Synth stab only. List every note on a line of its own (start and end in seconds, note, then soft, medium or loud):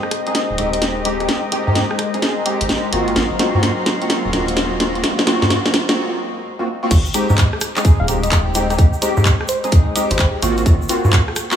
0.27 0.56 G#3 medium
0.27 0.56 C4 medium
0.27 0.56 D#4 medium
0.27 0.56 G#4 medium
0.58 1.03 G#3 medium
0.58 1.03 C4 medium
0.58 1.03 D#4 medium
0.58 1.03 G4 loud
1.05 1.18 G#3 loud
1.05 1.18 C4 loud
1.05 1.18 D#4 medium
1.05 1.18 G4 loud
1.20 1.37 G#3 medium
1.20 1.37 C4 medium
1.20 1.37 D#4 medium
1.20 1.37 G4 medium
1.52 1.65 G#3 medium
1.52 1.65 C4 medium
1.52 1.65 D#4 medium
1.52 1.65 G4 loud
1.67 1.84 G#3 loud
1.67 1.84 C4 medium
1.67 1.84 D#4 medium
1.67 1.84 G4 loud
2.14 2.44 G#3 medium
2.14 2.44 C4 medium
2.14 2.44 D#4 medium
2.14 2.44 G#4 medium
2.46 2.91 G#3 medium
2.46 2.91 C4 medium
2.46 2.91 D#4 medium
2.46 2.91 G4 loud
2.93 3.06 A#3 loud
2.93 3.06 C4 medium
2.93 3.06 F4 medium
2.93 3.06 F#4 loud
3.08 3.25 A#3 medium
3.08 3.25 C4 medium
3.08 3.25 F4 medium
3.08 3.25 F#4 medium
3.39 3.52 A#3 loud
3.39 3.52 C4 medium
3.39 3.52 F4 medium
3.39 3.52 F#4 loud
3.55 3.72 A#3 loud
3.55 3.72 C4 medium
3.55 3.72 F4 medium
3.55 3.72 F#4 loud
4.01 4.31 A#3 medium
4.01 4.31 C4 medium
4.01 4.31 F4 medium
4.01 4.31 F#4 medium
4.33 4.78 A#3 medium
4.33 4.78 C4 medium
4.33 4.78 F4 medium
4.33 4.78 F#4 loud
4.80 4.93 A#3 loud
4.80 4.93 C4 loud
4.80 4.93 F4 medium
4.80 4.93 F#4 loud
4.95 5.12 A#3 medium
4.95 5.12 C4 medium
4.95 5.12 F4 medium
4.95 5.12 F#4 medium
5.27 5.40 A#3 loud
5.27 5.40 C4 medium
5.27 5.40 F4 medium
5.27 5.40 F#4 loud
5.42 5.59 A#3 medium
5.42 5.59 C4 medium
5.42 5.59 F4 medium
5.42 5.59 F#4 loud
5.89 6.19 A#3 medium
5.89 6.19 C4 medium
5.89 6.19 F4 medium
5.89 6.19 F#4 medium
6.59 6.67 A#3 medium
6.59 6.67 C4 medium
6.59 6.67 F4 medium
6.59 6.67 F#4 medium
6.83 6.90 A#3 medium
6.83 6.90 C4 medium
6.83 6.90 F4 medium
6.83 6.90 F#4 medium
7.14 7.27 G#3 loud
7.14 7.27 C4 medium
7.14 7.27 D#4 medium
7.14 7.27 G4 loud
7.30 7.47 G#3 loud
7.30 7.47 C4 medium
7.30 7.47 D#4 medium
7.30 7.47 G4 loud
7.76 8.06 G#3 medium
7.76 8.06 C4 medium
7.76 8.06 D#4 medium
7.76 8.06 G#4 medium
8.08 8.53 G#3 medium
8.08 8.53 C4 medium
8.08 8.53 D#4 medium
8.08 8.53 G4 loud
8.55 8.68 G#3 loud
8.55 8.68 C4 loud
8.55 8.68 D#4 medium
8.55 8.68 G4 loud
8.70 8.87 G#3 medium
8.70 8.87 C4 medium
8.70 8.87 D#4 medium
8.70 8.87 G4 medium
9.02 9.15 G#3 loud
9.02 9.15 C4 medium
9.02 9.15 D#4 medium
9.02 9.15 G4 loud
9.17 9.34 G#3 medium
9.17 9.34 C4 medium
9.17 9.34 D#4 medium
9.17 9.34 G4 loud
9.64 9.94 G#3 medium
9.64 9.94 C4 medium
9.64 9.94 D#4 medium
9.64 9.94 G#4 medium
9.95 10.40 G#3 medium
9.95 10.40 C4 medium
9.95 10.40 D#4 medium
9.95 10.40 G4 loud
10.42 10.55 A#3 loud
10.42 10.55 C4 medium
10.42 10.55 F4 loud
10.42 10.55 F#4 loud
10.58 10.75 A#3 medium
10.58 10.75 C4 medium
10.58 10.75 F4 medium
10.58 10.75 F#4 medium
10.89 11.02 A#3 loud
10.89 11.02 C4 medium
10.89 11.02 F4 medium
10.89 11.02 F#4 loud
11.04 11.22 A#3 loud
11.04 11.22 C4 medium
11.04 11.22 F4 medium
11.04 11.22 F#4 loud
11.51 11.56 A#3 medium
11.51 11.56 C4 medium
11.51 11.56 F4 medium
11.51 11.56 F#4 medium